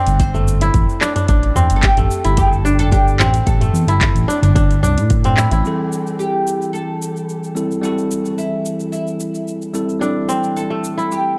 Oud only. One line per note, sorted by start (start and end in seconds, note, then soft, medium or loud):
0.00 0.19 B4 loud
0.20 1.25 C5 loud
1.76 1.82 A4 medium
1.83 2.37 G4 loud
2.37 2.77 A4 loud
2.79 2.91 A4 loud
2.91 3.43 G4 loud
3.46 5.06 A4 medium
6.19 6.73 G4 medium
6.73 7.83 A4 medium
7.83 8.38 F#4 medium
8.38 8.91 E4 medium
8.92 9.70 E4 medium
10.56 11.07 A4 medium
11.12 11.39 G4 medium